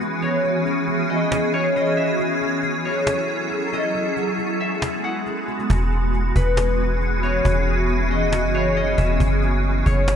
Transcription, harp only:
0.00 1.40 B4 medium
0.22 1.53 C#5 medium
1.10 1.76 D#5 medium
1.54 2.85 C#5 medium
1.76 2.03 D#5 medium
1.97 3.69 E5 medium
2.85 4.76 C#5 medium
3.73 4.67 D#5 medium
4.61 6.33 E5 medium
5.04 6.65 F#5 medium
6.36 8.41 B4 medium
7.23 8.54 C#5 medium
8.11 8.76 D#5 medium
8.55 9.85 C#5 medium
8.77 9.04 D#5 medium
8.98 10.16 E5 medium
9.86 10.16 C#5 medium

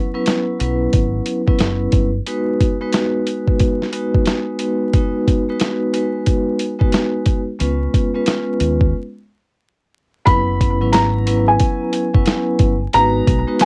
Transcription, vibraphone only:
0.14 0.57 F#3 medium
0.14 0.57 B3 medium
0.14 0.57 C#4 medium
0.14 0.57 E4 medium
0.14 0.58 B4 loud
0.60 1.39 F#3 medium
0.60 1.39 B3 medium
0.60 1.39 C#4 medium
0.60 1.39 E4 medium
0.60 1.40 B4 loud
1.47 2.07 F#3 medium
1.47 2.07 B3 medium
1.47 2.08 C#4 medium
1.47 2.08 E4 medium
1.47 2.08 B4 medium
2.26 2.76 G#3 medium
2.26 2.76 B3 medium
2.26 2.76 D#4 medium
2.26 2.76 F#4 medium
2.26 2.76 B4 loud
2.81 2.91 G#3 medium
2.81 2.91 B3 medium
2.81 2.92 D#4 medium
2.81 2.92 F#4 medium
2.81 2.92 B4 loud
2.92 3.87 G#3 medium
2.92 3.87 B3 medium
2.92 3.87 D#4 medium
2.92 3.87 F#4 medium
2.92 3.87 B4 loud
3.92 4.24 G#3 medium
3.92 4.24 B3 medium
3.92 4.24 D#4 medium
3.92 4.24 F#4 medium
3.92 4.25 B4 loud
4.28 4.58 G#3 medium
4.28 4.58 B3 medium
4.28 4.59 D#4 medium
4.28 4.59 F#4 medium
4.28 4.59 B4 medium
4.59 4.91 G#3 medium
4.59 4.91 B3 medium
4.59 4.91 D#4 medium
4.59 4.91 F#4 medium
4.59 4.91 B4 medium
4.93 5.42 G#3 medium
4.93 5.43 B3 medium
4.93 5.43 D#4 medium
4.93 5.43 F#4 medium
4.93 5.43 B4 loud
5.49 5.91 G#3 medium
5.49 5.91 B3 medium
5.49 5.91 D#4 medium
5.49 5.92 F#4 medium
5.49 5.92 B4 loud
5.93 6.72 G#3 loud
5.93 6.73 B3 medium
5.93 6.73 D#4 medium
5.93 6.73 F#4 medium
5.93 6.73 B4 loud
6.79 7.40 G#3 loud
6.79 7.40 B3 medium
6.79 7.40 D#4 medium
6.79 7.40 F#4 medium
6.79 7.40 B4 loud
7.59 8.09 G#3 medium
7.59 8.09 B3 medium
7.59 8.09 C#4 medium
7.59 8.09 F4 medium
7.59 8.09 B4 medium
8.15 8.25 G#3 medium
8.15 8.26 B3 medium
8.15 8.26 C#4 medium
8.15 8.26 F4 medium
8.15 8.26 B4 loud
8.27 8.93 G#3 medium
8.27 8.93 B3 medium
8.27 8.94 C#4 medium
8.27 8.94 F4 medium
8.27 8.94 B4 loud
10.25 10.75 F#3 medium
10.25 10.75 B3 medium
10.25 10.75 C#4 medium
10.25 10.75 E4 medium
10.25 10.76 B4 loud
10.81 11.24 F#3 medium
10.81 11.24 B3 medium
10.81 11.24 C#4 medium
10.81 11.24 E4 medium
10.81 11.24 B4 loud
11.26 12.06 F#3 medium
11.26 12.06 B3 medium
11.26 12.06 C#4 medium
11.26 12.06 E4 medium
11.26 12.06 B4 loud
12.14 12.74 F#3 medium
12.14 12.74 B3 medium
12.14 12.74 C#4 medium
12.14 12.74 E4 medium
12.14 12.74 B4 loud
12.93 13.42 G#3 loud
12.93 13.42 B3 medium
12.93 13.43 D#4 medium
12.93 13.43 F#4 medium
12.93 13.43 B4 loud
13.47 13.58 G#3 medium
13.47 13.58 B3 medium
13.47 13.58 D#4 medium
13.47 13.59 F#4 medium
13.47 13.59 B4 loud
13.59 13.65 G#3 medium
13.59 13.65 B3 medium
13.59 13.65 D#4 medium
13.59 13.65 F#4 medium
13.59 13.65 B4 loud

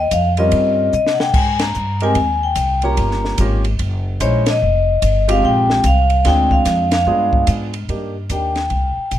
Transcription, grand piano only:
0.38 0.90 G3 medium
0.38 0.90 C4 medium
0.38 0.91 C#4 medium
0.38 0.91 F4 medium
0.38 0.91 A#4 medium
2.02 2.15 G#3 medium
2.02 2.15 C4 medium
2.02 2.15 D#4 medium
2.02 2.15 G4 medium
2.02 2.15 A#4 medium
2.83 3.36 A#3 medium
2.83 3.36 C#4 medium
2.83 3.36 F4 medium
2.83 3.36 G4 medium
2.83 3.36 C#5 medium
3.40 3.63 A#3 medium
3.40 3.63 C#4 medium
3.40 3.63 F4 medium
3.40 3.63 G4 medium
3.40 3.63 A#4 medium
4.20 4.44 G#3 medium
4.20 4.44 C#4 medium
4.20 4.44 D#4 medium
4.20 4.44 E4 medium
4.20 4.44 C5 medium
5.28 5.81 G#3 medium
5.28 5.81 C4 medium
5.28 5.81 D#4 medium
5.28 5.81 F4 medium
5.28 5.81 G4 medium
6.25 6.87 G#3 medium
6.25 6.87 C4 medium
6.25 6.87 D4 medium
6.25 6.87 F4 medium
6.25 6.87 G#4 medium
7.07 7.69 G#3 medium
7.07 7.69 B3 medium
7.07 7.69 D4 medium
7.07 7.69 F4 medium
7.07 7.69 G#4 medium
7.89 8.13 A#3 soft
7.89 8.13 D4 soft
7.89 8.13 D#4 soft
7.89 8.13 G4 soft
8.30 8.54 A#3 soft
8.30 8.54 D4 soft
8.30 8.54 D#4 soft
8.30 8.54 G4 soft

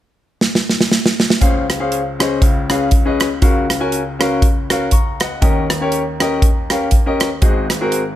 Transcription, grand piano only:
1.41 2.38 C#2 medium
1.41 2.38 C#3 medium
1.41 1.63 C#4 medium
1.41 1.64 G#4 medium
1.41 1.64 C5 medium
1.41 1.64 F5 medium
1.80 1.99 C#4 medium
1.80 2.00 G#4 medium
1.80 2.00 C5 medium
1.80 2.00 F5 medium
2.19 2.41 C#4 medium
2.19 2.42 G#4 medium
2.19 2.42 C5 medium
2.19 2.42 D#5 medium
2.42 3.38 C#2 medium
2.42 3.38 C#3 medium
2.70 2.87 C#4 medium
2.70 2.87 G#4 medium
2.70 2.87 B4 medium
2.70 2.88 F5 medium
3.05 3.26 C#4 medium
3.05 3.26 G#4 medium
3.05 3.27 B4 medium
3.05 3.27 D#5 medium
3.42 5.38 C#2 medium
3.42 5.38 C#3 medium
3.42 3.64 C#4 medium
3.42 3.64 F#4 medium
3.42 3.64 A#4 medium
3.42 3.65 F5 medium
3.80 4.00 C#4 medium
3.80 4.00 F#4 medium
3.80 4.00 A#4 medium
3.80 4.00 G#5 medium
4.19 4.43 C#4 medium
4.19 4.43 F#4 medium
4.19 4.44 A#4 medium
4.19 4.44 F5 medium
4.70 4.87 C#4 medium
4.70 4.87 F#4 medium
4.70 4.88 A#4 medium
4.70 4.88 F5 medium
4.92 5.19 A#5 medium
4.92 5.19 C#6 medium
5.21 5.41 D#5 medium
5.21 5.68 F#5 medium
5.41 7.38 D#2 medium
5.41 7.38 D#3 medium
5.41 5.64 C#4 medium
5.41 5.64 G4 medium
5.41 5.64 A#4 medium
5.41 5.65 D#5 medium
5.81 6.00 C#4 medium
5.81 6.00 G4 medium
5.81 6.00 A#4 medium
5.81 6.01 C#5 medium
6.20 6.43 C#4 medium
6.20 6.44 G4 medium
6.20 6.44 A#4 medium
6.20 6.44 D#5 medium
6.70 6.87 C#4 medium
6.70 6.88 G4 medium
6.70 6.88 A#4 medium
6.70 6.88 F5 medium
7.06 7.27 C#4 medium
7.06 7.27 G4 medium
7.06 7.27 A#4 medium
7.06 7.27 D#5 medium
7.42 8.16 G#1 medium
7.42 8.16 G#2 medium
7.42 7.64 C4 medium
7.42 7.64 F#4 medium
7.42 7.64 G#4 medium
7.42 7.65 D#5 medium
7.81 8.00 C4 medium
7.81 8.00 F#4 medium
7.81 8.00 G#4 medium
7.81 8.01 A#4 medium

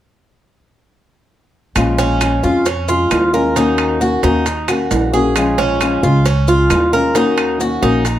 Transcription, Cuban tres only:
1.98 2.42 C#4 medium
2.44 2.65 F4 medium
2.66 2.88 C#4 medium
2.89 3.32 F4 medium
3.34 3.56 A#4 medium
3.56 4.00 D#4 medium
4.01 4.23 F#4 medium
4.24 4.67 D#4 medium
4.69 5.12 F#4 medium
5.14 5.57 G#4 medium
5.58 6.02 C#4 medium
6.03 6.25 F4 medium
6.26 6.48 C#4 medium
6.48 6.92 F4 medium
6.93 7.15 A#4 medium
7.16 7.59 D#4 medium
7.61 7.82 F#4 medium
7.83 8.19 D#4 medium

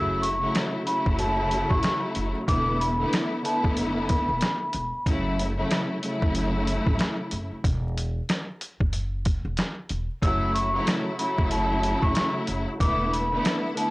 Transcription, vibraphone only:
0.00 0.19 E6 medium
0.22 0.51 C#6 medium
0.87 1.04 B5 medium
1.19 1.67 A5 medium
1.70 1.99 C#6 medium
2.48 2.77 D6 loud
2.81 3.09 B5 medium
3.45 3.62 A5 medium
4.09 5.02 B5 medium
10.23 10.52 E6 medium
10.54 10.83 C#6 medium
11.19 11.36 B5 medium
11.52 12.00 A5 medium
12.02 12.31 C#6 medium
12.80 13.09 D6 loud
13.12 13.42 B5 medium
13.77 13.90 A5 medium

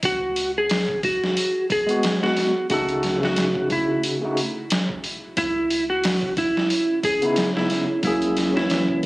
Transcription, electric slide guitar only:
0.05 0.51 F#4 loud
0.58 1.00 G#4 medium
1.05 1.65 F#4 medium
1.72 2.17 G#4 medium
2.23 2.66 F#4 medium
2.71 3.17 F#4 medium
3.25 3.67 F#4 medium
3.72 4.01 E4 medium
5.38 5.84 E4 medium
5.90 6.33 F#4 medium
6.38 6.98 E4 medium
7.05 7.50 G#4 medium
7.57 8.00 E4 medium
8.05 8.50 E4 medium
8.57 9.00 E4 medium

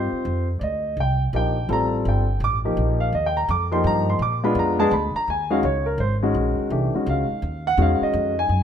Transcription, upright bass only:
0.00 0.11 G2 medium
0.12 muted upright bass stroke soft
0.25 0.60 F2 medium
0.61 0.96 D2 medium
0.97 1.32 C2 medium
1.33 1.68 A#1 medium
1.69 2.04 A1 medium
2.05 2.40 G1 medium
2.40 2.75 A1 medium
2.77 3.11 A#1 loud
3.13 3.47 D#2 medium
3.48 3.83 F2 medium
3.84 4.18 G2 medium
4.19 4.54 A#2 medium
4.55 4.90 F2 medium
4.91 5.13 D2 medium
5.14 muted upright bass stroke soft
5.28 5.62 D#2 medium
5.63 5.97 C#2 medium
5.98 6.33 G#1 medium
6.34 6.56 A#1 medium
6.59 muted upright bass stroke soft
6.70 6.92 C2 medium
6.94 muted upright bass stroke soft
7.06 7.28 C#2 medium
7.30 muted upright bass stroke soft
7.42 7.77 D#2 medium
7.77 7.99 E2 medium
8.01 muted upright bass stroke soft
8.13 8.48 F2 medium
8.49 8.61 F#2 medium

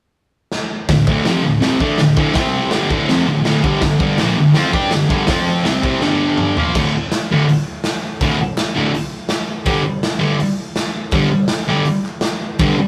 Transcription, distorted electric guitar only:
0.90 1.04 D2 medium
0.90 1.04 A2 medium
1.08 1.25 D2 loud
1.08 1.26 A2 medium
1.08 1.26 D3 medium
1.26 1.43 F2 medium
1.26 1.43 C3 medium
1.26 1.44 F3 medium
1.43 1.58 D2 medium
1.43 1.59 A2 medium
1.61 1.80 C3 medium
1.61 1.79 G3 loud
1.61 1.80 C4 medium
1.80 1.98 D3 medium
1.80 1.99 A3 medium
1.80 1.99 D4 loud
1.98 2.14 D2 medium
1.98 2.14 A2 medium
2.16 2.35 D2 medium
2.16 2.35 A2 medium
2.16 2.35 D3 medium
2.35 2.70 C3 medium
2.35 2.71 G3 medium
2.35 2.72 C4 medium
2.71 2.90 G2 medium
2.71 2.90 D3 loud
2.71 2.91 G3 loud
2.91 3.09 D2 medium
2.91 3.09 A2 loud
2.91 3.10 D3 medium
3.09 3.27 F2 medium
3.09 3.28 C3 medium
3.09 3.28 F3 medium
3.27 3.42 D2 medium
3.27 3.43 A2 medium
3.45 3.63 D2 medium
3.45 3.64 A2 medium
3.45 3.63 D3 medium
3.63 3.81 G2 medium
3.63 3.82 D3 loud
3.63 3.83 G3 medium
3.82 3.97 G2 medium
3.82 3.98 D3 medium
3.99 4.18 G2 medium
3.99 4.19 D3 medium
3.99 4.19 G3 loud
4.19 4.36 A#2 loud
4.19 4.37 F3 medium
4.19 4.38 A#3 loud
4.36 4.52 G2 medium
4.36 4.53 D3 medium
4.55 4.74 F3 medium
4.55 4.72 C4 loud
4.55 4.72 F4 loud
4.73 4.92 G3 medium
4.73 4.92 D4 medium
4.73 4.92 G4 loud
4.90 5.06 G2 medium
4.90 5.07 D3 medium
5.09 5.28 G2 medium
5.09 5.28 D3 medium
5.09 5.29 G3 medium
5.29 5.64 F3 medium
5.29 5.64 C4 medium
5.29 5.66 F4 loud
5.64 5.81 C3 medium
5.64 5.82 G3 loud
5.64 5.83 C4 loud
5.83 6.01 C3 medium
5.83 6.02 G3 medium
5.83 6.02 C4 loud
6.02 6.56 G2 loud
6.02 6.57 D3 medium
6.02 6.57 G3 medium
6.58 6.75 A#2 medium
6.58 6.75 F3 loud
6.58 6.75 A#3 loud
6.76 6.90 D2 medium
6.76 6.91 A2 medium
6.76 6.90 D3 medium
7.31 7.45 D2 medium
7.31 7.45 A2 loud
7.31 7.46 D3 medium
8.22 8.36 D2 medium
8.22 8.36 A2 medium
8.22 8.36 D3 medium
8.75 8.90 D2 medium
8.75 8.90 A2 medium
8.75 8.91 D3 loud
9.66 9.81 G2 medium
9.66 9.81 D3 medium
9.66 9.81 G3 loud
10.19 10.35 G2 medium
10.19 10.36 D3 loud
10.19 10.36 G3 loud
11.13 11.28 G2 medium
11.13 11.28 D3 medium
11.13 11.28 G3 loud
11.68 11.83 G2 medium
11.68 11.83 D3 medium
11.68 11.84 G3 loud
12.59 12.75 G2 medium
12.59 12.75 D3 medium
12.59 12.75 G3 loud

